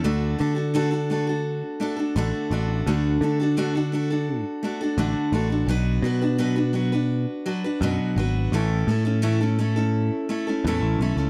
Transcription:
<<
  \new Staff \with { instrumentName = "Steel-string acoustic guitar" } { \time 4/4 \key d \major \tempo 4 = 85 <d a d' fis' a'>8 <a d' fis' a'>16 <d' fis' a'>16 <d a d' fis' a'>16 <d' fis' a'>16 <a d' fis' a'>16 <d' fis' a'>8. <a d' fis' a'>16 <d' fis' a'>16 <d a d' fis' a'>8 <a d' fis' a'>8 | <d a d' fis' a'>8 <a d' fis' a'>16 <d' fis' a'>16 <d a d' fis' a'>16 <d' fis' a'>16 <a d' fis' a'>16 <d' fis' a'>8. <a d' fis' a'>16 <d' fis' a'>16 <d a d' fis' a'>8 <a d' fis' a'>16 <d' fis' a'>16 | <b, fis d' fis' b'>8 <fis d' fis' b'>16 <d' fis' b'>16 <b, fis d' fis' b'>16 <d' fis' b'>16 <fis d' fis' b'>16 <d' fis' b'>8. <fis d' fis' b'>16 <d' fis' b'>16 <b, fis d' fis' b'>8 <fis d' fis' b'>8 | <a, e a cis' e' a'>8 <a cis' e' a'>16 <a cis' e' a'>16 <a, e a cis' e' a'>16 <a cis' e' a'>16 <a cis' e' a'>16 <a cis' e' a'>8. <a cis' e' a'>16 <a cis' e' a'>16 <a, e a cis' e' a'>8 <a cis' e' a'>16 <a cis' e' a'>16 | }
  \new Staff \with { instrumentName = "Picked electric bass" } { \clef bass \time 4/4 \key d \major d,8 d2 r8 a,,16 r16 a,,8 | d,8 d2 r8 a,,16 r16 a,,8 | b,,8 b,2 r8 fis,16 r16 gis,,8 | a,,8 a,2 r8 e,16 a,,16 b,,16 cis,16 | }
>>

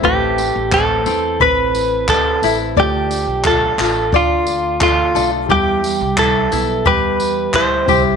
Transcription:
<<
  \new Staff \with { instrumentName = "Clean electric guitar" } { \time 4/4 \key e \phrygian \tempo 4 = 88 g'4 a'4 b'4 a'8. r16 | g'4 a'4 f'4 f'8. r16 | g'4 a'4 b'4 c''8. r16 | }
  \new Staff \with { instrumentName = "Ukulele" } { \time 4/4 \key e \phrygian b'4 c'8 c'8 b'4 c'8 e'8 | d''4 f'8 f'8 d''4 f'8 a'8 | g'4 e'8 e'8 g'4 e'8 g'8 | }
  \new Staff \with { instrumentName = "Felt piano" } { \time 4/4 \key e \phrygian <a c' e' b'>1 | <a d' f' c'' d''>2.~ <a d' f' c'' d''>8 <a d' f' d''>8 | <g e' g' e''>2.~ <g e' g' e''>8 <c' e' g' e''>8 | }
  \new Staff \with { instrumentName = "Nylon-string guitar" } { \time 4/4 \key e \phrygian a8 c'8 b'8 e'8 c'8 e'8 b'8 e'8 | a8 d'8 a'8 f'8 d'8 f'8 a'8 f'8 | g8 g8 e'8 b8 g4 e'8 g8 | }
  \new Staff \with { instrumentName = "Upright bass" } { \clef bass \time 4/4 \key e \phrygian a,,8. a,,8. e,8 a,,4 d,8 a,,8 | d,8. b,,8. a,,8 d,4. b,,8 | e,8. c,8. b,,8 e,4 d,8 c,8 | }
  \new DrumStaff \with { instrumentName = "Drums" } \drummode { \time 4/4 bd8 tamb8 <hc bd>8 tamb8 bd8 tamb8 <hc bd>8 tamb8 | bd8 tamb8 <hc bd>8 <hc tamb>8 bd8 tamb8 <hc bd>8 tamb8 | bd8 tamb8 <hc bd>8 tamb8 bd8 tamb8 <hc bd>8 <bd tamb>8 | }
>>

